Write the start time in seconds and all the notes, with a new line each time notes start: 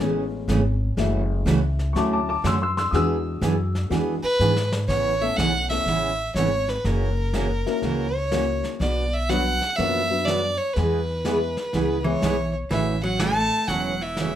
0.00 A1 C#3 E3 G#3 A3 B3 C#4 G#4, brush sweep, snare
0.48 G#1 C#3 E3 A3 C#4 G#4, snare, hi-hat pedal
0.97 F#1 C#3 E3 G#3 A3 C#4 E4 F#4, brush sweep, snare
1.46 C#2 C#3 E3 A3 C#4 F#4, snare, hi-hat pedal
1.79 snare
1.93 D2 D3 F#3 A3 C#4 A5 C#6, brush sweep, snare
1.97 E4 F#4 D6
2.13 A5 D6
2.29 A5 D6
2.44 F#2 D3 F#3 A3 C#4 F#4 C6 E6, snare, hi-hat pedal
2.62 C6 E6
2.77 C6 E6, snare
2.91 E2 E3 G#3 B3 D4 G#4 D#6, brush sweep, snare
2.95 F#4 E6
3.41 F#2 E3 B3 D4 G#4, snare, hi-hat pedal
3.75 snare
3.90 E2 E3 G#3 B3 D4 F#4 G#4, brush sweep, snare
4.23 B4, muted upright bass stroke
4.40 G#2 E3 B3 D4 G#4, hi-hat pedal
4.56 snare
4.72 snare
4.88 A1 C#3 E3 B3 C#4 C#5, brush sweep, kick, snare, crash
5.21 A3 B3 C#4 E4 A4 E5
5.36 B1 C#3 E3 B3 C#4 F#5, snare, hi-hat pedal
5.69 A3 B3 C#4 E4 A4 E5, snare
5.86 A1 C#3 E3 B3 C#4, brush sweep, snare
6.35 G#1 C#3 E3 B3 C#4 C#5, snare, hi-hat pedal
6.68 B4, snare
6.84 F#1 C#3 E3 A#3 C#4 F#4 A#4, brush sweep, snare
7.34 C#3 E3 A#3 C#4 F#4, snare, hi-hat pedal
7.66 A#3 C#4 E4 F#4 A#4, snare
7.82 C#2 C#3 E3 A#3 C#4 F#4, brush sweep, snare
8.16 C#5
8.31 C#3 E3 A#3 C#4 E4 F#4 A#4, snare, hi-hat pedal
8.64 snare
8.80 B1 B2 F#3 B3 D4 F#4 D5, brush sweep, snare
9.13 E5
9.29 B2 F#3 B3 D4 F#4 B4 F#5, snare, hi-hat pedal
9.62 snare
9.76 F#2 B2 F3 F#3 A#3 B3 C#4 F4 A#4 E5, brush sweep, snare
9.80 D4 F#4
10.10 F#3 B3 D4 F#4 B4
10.25 B2 F#3 B3 D4 F#4 D5, snare, hi-hat pedal
10.57 C#5
10.73 E2 E3 G#3 B3 B4, brush sweep, snare
10.77 E4 G#4
11.25 E3 G#3 B3 E4 G#4 B4, snare, hi-hat pedal
11.57 snare
11.73 C#2 E3 G#3 B3 E4 G#4, brush sweep, snare
12.04 E3 G#3 B3 E4 G#4 B4 C#5
12.22 B1 E3 G#3 B3 E4 G#4, snare, hi-hat pedal
12.71 A1 C#3 E3 A3 C#4 F#4 E5, brush sweep, snare
13.03 F#3 F#5
13.19 C#3 E3 A3 C#4 F#4 A5, snare, hi-hat pedal
13.68 E1 C#3 E3 F#3 A3 C#4 F#4 F#5, brush sweep, snare
14.01 E3 E5
14.17 C#3 E3 A3 C#4 F#4, snare, hi-hat pedal